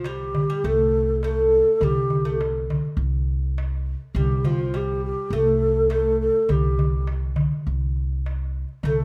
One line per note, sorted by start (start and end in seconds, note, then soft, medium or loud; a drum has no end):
0.00 0.43 C2 medium
0.04 0.49 G3 medium
0.04 0.67 G4 medium
0.04 darbuka tek medium
0.35 darbuka dum medium
0.49 0.63 G3 medium
0.49 darbuka ka soft
0.64 1.60 C2 medium
0.64 1.23 A3 medium
0.64 1.23 A4 medium
1.09 darbuka ka soft
1.23 1.82 A3 medium
1.23 1.85 A4 loud
1.23 darbuka tek medium
1.67 darbuka ka soft
1.81 2.77 C2 medium
1.81 2.23 G3 medium
1.81 2.41 G4 medium
1.81 darbuka dum medium
1.96 darbuka ka soft
2.10 darbuka dum medium
2.25 2.39 A3 medium
2.41 darbuka tek medium
2.70 darbuka dum medium
2.85 darbuka ka soft
2.97 3.94 C2 medium
3.43 darbuka ka soft
3.58 darbuka tek medium
4.02 darbuka ka soft
4.15 5.11 C2 medium
4.15 4.46 G3 medium
4.15 4.47 G4 medium
4.15 darbuka dum medium
4.31 darbuka ka soft
4.44 4.75 F3 medium
4.44 4.77 F4 medium
4.44 darbuka dum medium
4.74 5.32 G3 medium
4.74 5.04 G4 medium
4.74 darbuka tek medium
5.04 5.35 G4 medium
5.18 darbuka ka soft
5.30 6.28 C2 medium
5.30 5.89 A3 medium
5.30 5.92 A4 loud
5.76 darbuka ka soft
5.90 6.48 A3 medium
5.90 6.19 A4 medium
5.90 darbuka tek medium
6.21 6.52 A4 medium
6.35 darbuka ka soft
6.49 7.46 C2 medium
6.49 7.04 G3 medium
6.49 7.09 G4 medium
6.49 darbuka dum medium
6.64 darbuka ka soft
6.79 darbuka dum medium
7.07 darbuka tek medium
7.36 darbuka dum loud
7.51 darbuka ka soft
7.67 8.63 C2 medium
7.81 darbuka ka soft
7.96 darbuka ka soft
8.12 darbuka ka soft
8.26 darbuka tek medium
8.55 darbuka ka soft
8.69 darbuka ka soft
8.83 9.04 C2 medium
8.83 9.04 A3 medium
8.83 9.04 A4 medium
8.83 darbuka dum medium
8.98 darbuka ka soft